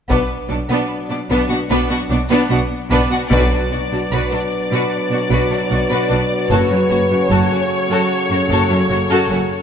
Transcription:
0.09 0.17 B1 medium
0.09 0.18 B2 soft
0.09 2.94 F#3 soft
0.09 0.28 B3 soft
0.09 0.29 B3 soft
0.09 2.95 D4 soft
0.09 0.29 D4 soft
0.09 0.29 B4 soft
0.09 taiko soft
0.49 0.58 B1 soft
0.49 0.58 B2 soft
0.49 0.59 B3 soft
0.49 0.57 D4 soft
0.49 0.58 D4 soft
0.49 0.57 D5 soft
0.69 0.78 B2 soft
0.69 0.88 B3 soft
0.69 0.89 B3 soft
0.69 0.89 D4 soft
0.69 0.88 B4 soft
1.10 1.18 B2 soft
1.10 1.18 B3 soft
1.10 1.18 D4 soft
1.10 1.18 D5 soft
1.30 1.38 B1 soft
1.30 1.38 B2 soft
1.30 1.48 B3 soft
1.30 1.49 B3 soft
1.30 1.49 D4 soft
1.30 1.49 B4 soft
1.49 1.58 B2 soft
1.49 1.58 B3 soft
1.49 1.58 D4 soft
1.49 1.57 F#4 soft
1.49 1.57 F#5 soft
1.70 1.78 B1 medium
1.70 1.78 B2 medium
1.70 1.89 B3 medium
1.70 1.89 D4 medium
1.70 1.88 B4 medium
1.90 1.98 B2 soft
1.90 1.98 B3 soft
1.90 1.98 D4 soft
1.90 1.98 F#4 soft
1.90 1.98 F#5 soft
2.10 2.18 B1 soft
2.10 2.18 B2 soft
2.10 2.18 B3 soft
2.10 2.18 D4 soft
2.10 2.18 D5 soft
2.29 2.38 B2 medium
2.29 2.48 B3 soft
2.29 2.48 B3 medium
2.29 2.49 D4 medium
2.29 2.48 B4 medium
2.50 2.58 B1 soft
2.50 2.58 B2 soft
2.50 2.59 B3 medium
2.50 2.58 D4 soft
2.50 2.59 F#4 soft
2.50 2.58 F#5 soft
2.90 2.98 B1 medium
2.90 2.98 B2 medium
2.90 3.10 B3 medium
2.90 3.10 D4 medium
2.90 3.10 B4 medium
3.10 3.18 B2 soft
3.10 3.20 B3 soft
3.10 3.20 D4 soft
3.10 3.19 F#4 soft
3.10 3.19 F#5 soft
3.30 3.49 B1 medium
3.30 3.49 B2 medium
3.30 6.47 B2 soft
3.30 9.52 F#3 medium
3.30 6.47 D4 soft
3.30 3.50 F#4 medium
3.30 7.27 B4 medium
3.30 3.50 B4 medium
3.30 6.47 D5 medium
3.30 taiko soft
3.51 3.59 B2 soft
3.51 3.60 D4 soft
3.51 3.60 F#4 soft
3.71 3.79 B1 soft
3.71 3.79 B2 soft
3.71 3.79 F#4 soft
3.71 3.80 F#4 soft
3.91 3.99 B2 soft
3.91 4.00 D4 soft
3.91 4.00 F#4 soft
4.10 4.18 B1 medium
4.10 4.19 B2 soft
4.10 4.30 F#4 soft
4.10 4.30 B4 medium
4.31 4.39 B2 soft
4.31 4.40 D4 soft
4.31 4.40 F#4 soft
4.71 4.79 B2 medium
4.71 4.90 F#4 medium
4.71 4.90 B4 soft
5.11 5.19 B2 soft
5.11 5.19 F#4 soft
5.30 5.38 B1 soft
5.30 5.39 B2 medium
5.30 5.49 F#4 soft
5.30 5.49 B4 soft
5.51 5.59 B2 soft
5.51 5.59 D4 soft
5.51 5.59 F#4 soft
5.70 5.78 B1 soft
5.70 5.78 B2 soft
5.70 5.78 F#4 soft
5.70 5.79 F#4 soft
5.89 5.98 B2 soft
5.89 6.10 F#4 soft
5.89 6.08 B4 soft
6.09 6.19 B1 soft
6.09 6.18 B2 soft
6.09 6.17 D4 soft
6.09 6.19 F#4 soft
6.50 6.59 F#1 medium
6.50 6.58 F#2 medium
6.50 9.52 C#3 soft
6.50 9.62 C#4 soft
6.50 6.69 F#4 medium
6.50 6.69 A4 soft
6.50 9.62 C#5 soft
6.70 6.78 F#2 soft
6.70 6.78 C#4 soft
6.70 6.79 F#4 soft
6.90 6.99 F#1 soft
6.90 6.98 F#2 soft
6.90 6.98 F#4 soft
6.90 6.99 F#4 soft
7.10 7.18 F#2 soft
7.10 7.18 C#4 soft
7.10 7.19 F#4 soft
7.30 7.39 F#1 medium
7.30 7.38 F#2 medium
7.30 7.49 F#4 medium
7.30 7.49 A4 soft
7.30 9.62 A4 soft
7.50 7.58 F#2 soft
7.50 7.59 C#4 soft
7.50 7.59 F#4 soft
7.90 7.98 F#2 medium
7.90 8.09 F#4 medium
7.90 8.09 A4 medium
8.30 8.38 F#2 soft
8.30 8.39 F#4 soft
8.50 8.58 F#1 medium
8.50 8.58 F#2 medium
8.50 8.69 F#4 medium
8.50 8.69 A4 medium
8.69 8.77 F#2 soft
8.69 8.78 C#4 soft
8.69 8.78 F#4 soft
8.89 8.98 F#1 soft
8.89 8.97 F#2 soft
8.89 8.98 F#4 soft
9.09 9.17 F#2 medium
9.09 9.29 F#4 medium
9.09 9.28 A4 medium
9.29 9.37 F#1 soft
9.29 9.37 F#2 soft
9.29 9.38 C#4 medium
9.29 9.38 F#4 soft

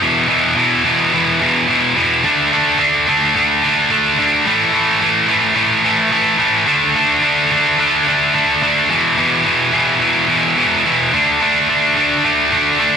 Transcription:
0.01 0.27 E2 loud
0.01 0.28 B2 loud
0.01 0.28 E3 loud
0.28 0.54 E2 medium
0.28 0.56 B2 medium
0.28 0.56 E3 loud
0.56 0.83 E2 medium
0.56 0.84 B2 medium
0.56 0.85 E3 loud
0.85 1.12 E2 medium
0.85 1.12 B2 medium
0.85 1.13 E3 loud
1.13 1.40 E2 medium
1.13 1.41 B2 loud
1.13 1.41 E3 loud
1.41 1.67 E2 medium
1.41 1.68 B2 loud
1.41 1.68 E3 loud
1.68 1.95 E2 medium
1.68 1.95 B2 medium
1.68 1.96 E3 medium
1.96 2.22 E2 medium
1.96 2.23 B2 medium
1.96 2.23 E3 medium
2.24 2.51 D3 medium
2.24 2.52 A3 loud
2.24 2.52 D4 loud
2.52 2.78 D3 medium
2.52 2.79 A3 medium
2.52 2.78 D4 loud
2.79 3.06 D3 medium
2.79 3.07 A3 medium
2.79 3.07 D4 loud
3.07 3.34 D3 medium
3.07 3.35 A3 medium
3.07 3.35 D4 medium
3.35 3.62 D3 medium
3.35 3.63 A3 loud
3.35 3.63 D4 loud
3.63 3.89 D3 loud
3.63 3.90 A3 loud
3.63 3.90 D4 loud
3.91 4.18 D3 medium
3.91 4.19 A3 medium
3.91 4.19 D4 medium
4.19 4.45 D3 medium
4.19 4.47 A3 medium
4.19 4.45 D4 medium
4.47 4.72 A2 loud
4.47 4.73 E3 loud
4.47 4.74 A3 loud
4.74 4.99 A2 medium
4.74 5.00 E3 loud
4.74 5.02 A3 medium
5.01 5.27 A2 medium
5.01 5.28 E3 medium
5.01 5.29 A3 medium
5.28 5.54 A2 medium
5.28 5.55 E3 loud
5.28 5.56 A3 loud
5.55 5.83 A2 loud
5.55 5.83 E3 loud
5.55 5.84 A3 loud
5.84 6.11 A2 loud
5.84 6.11 E3 loud
5.84 6.11 A3 loud
6.12 6.38 A2 medium
6.12 6.38 E3 loud
6.12 6.39 A3 loud
6.39 6.66 A2 medium
6.39 6.66 E3 medium
6.39 6.66 A3 loud
6.67 6.94 D3 medium
6.67 6.95 A3 loud
6.67 6.95 D4 loud
6.95 7.22 D3 medium
6.95 7.23 A3 medium
6.95 7.23 D4 loud
7.23 7.50 D3 medium
7.23 7.50 A3 medium
7.23 7.51 D4 medium
7.51 7.77 D3 medium
7.51 7.78 A3 medium
7.51 7.79 D4 loud
7.78 8.06 D3 medium
7.78 8.06 A3 loud
7.78 8.07 D4 loud
8.07 8.33 D3 medium
8.07 8.33 A3 medium
8.07 8.34 D4 loud
8.34 8.61 D3 medium
8.34 8.61 A3 medium
8.34 8.62 D4 medium
8.62 8.89 D3 medium
8.62 8.89 A3 medium
8.62 8.89 D4 loud
8.90 9.16 E2 loud
8.90 9.17 B2 loud
8.90 9.18 E3 loud
9.17 9.44 E2 medium
9.17 9.45 B2 medium
9.17 9.45 E3 loud
9.45 9.72 E2 medium
9.45 9.73 B2 medium
9.45 9.73 E3 loud
9.73 9.99 E2 medium
9.73 10.00 B2 medium
9.73 10.01 E3 loud
10.01 10.27 E2 medium
10.01 10.28 B2 loud
10.01 10.29 E3 loud
10.29 10.56 E2 medium
10.29 10.56 B2 loud
10.29 10.57 E3 loud
10.57 10.84 E2 medium
10.57 10.85 B2 medium
10.57 10.85 E3 loud
10.85 11.11 E2 medium
10.85 11.12 B2 medium
10.85 11.12 E3 loud
11.13 11.40 D3 medium
11.13 11.41 A3 loud
11.13 11.41 D4 loud
11.41 11.68 D3 medium
11.41 11.69 A3 loud
11.41 11.68 D4 medium
11.69 11.95 D3 medium
11.69 11.96 A3 medium
11.69 11.96 D4 loud
11.96 12.23 D3 medium
11.96 12.24 A3 loud
11.96 12.24 D4 loud
12.24 12.51 D3 loud
12.24 12.51 A3 loud
12.24 12.52 D4 loud
12.52 12.79 D3 medium
12.52 12.79 A3 loud
12.52 12.80 D4 loud
12.80 12.97 D3 medium
12.80 12.97 A3 medium
12.80 12.97 D4 loud

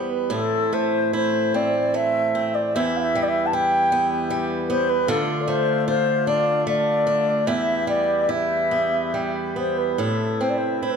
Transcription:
0.00 0.30 E2 medium
0.00 0.39 G3 soft
0.00 0.39 B3 soft
0.00 0.30 E4 soft
0.00 0.11 C5 medium
0.10 0.33 B4 medium
0.30 2.74 A2 medium
0.30 2.72 A2 medium
0.30 5.04 E3 soft
0.30 2.72 C4 medium
0.30 1.13 E4 medium
0.30 0.75 A4 medium
0.73 1.93 A3 soft
0.73 1.14 C5 medium
1.13 2.76 E4 medium
1.13 1.57 C5 medium
1.54 2.34 C4 soft
1.54 1.96 D5 medium
1.94 2.82 A3 soft
1.94 2.55 E5 medium
2.35 2.83 C4 soft
2.54 2.76 D5 medium
2.74 5.09 E2 medium
2.74 5.06 B3 medium
2.74 3.52 E4 medium
2.74 5.06 G4 medium
2.74 2.97 E5 medium
2.96 3.02 F5 medium
3.01 3.24 E5 loud
3.15 4.29 G3 medium
3.22 3.29 D5 medium
3.28 3.47 E5 loud
3.46 3.55 A5 medium
3.53 5.08 E4 medium
3.53 4.43 G5 loud
3.92 4.68 B3 medium
4.30 5.16 G3 medium
4.69 5.16 B3 medium
4.69 4.90 C5 medium
4.89 5.10 B4 medium
5.06 7.43 D3 medium
5.06 7.46 D3 medium
5.06 7.42 A3 medium
5.06 7.42 F4 medium
5.06 5.86 F4 medium
5.06 5.42 A4 medium
5.41 5.50 D5 medium
5.48 6.66 A3 medium
5.48 5.87 C5 loud
5.88 7.46 F4 medium
5.88 6.29 C5 loud
6.27 7.05 D4 medium
6.27 6.66 D5 medium
6.67 7.54 A3 medium
6.67 7.48 D5 medium
7.07 7.54 D4 medium
7.46 10.00 E2 medium
7.46 9.97 E3 medium
7.46 8.28 E4 medium
7.46 9.97 G4 medium
7.46 10.96 B4 medium
7.46 7.87 E5 medium
7.87 9.13 G3 soft
7.87 8.31 D5 medium
8.29 9.99 E4 medium
8.29 9.29 E5 medium
8.71 9.56 B3 soft
9.14 10.08 G3 soft
9.56 10.44 B3 soft
9.56 9.79 C5 medium
9.77 9.91 B4 medium
9.91 10.01 B4 soft
9.98 10.96 A2 medium
9.98 10.96 C3 medium
9.98 10.96 A3 medium
9.98 10.82 E4 soft
9.98 10.44 A4 medium
10.41 10.96 C4 soft
10.41 10.51 C5 medium
10.49 10.59 D5 medium
10.57 10.83 C5 medium
10.82 10.96 E4 soft
10.82 10.92 C5 medium
10.90 10.96 B4 medium

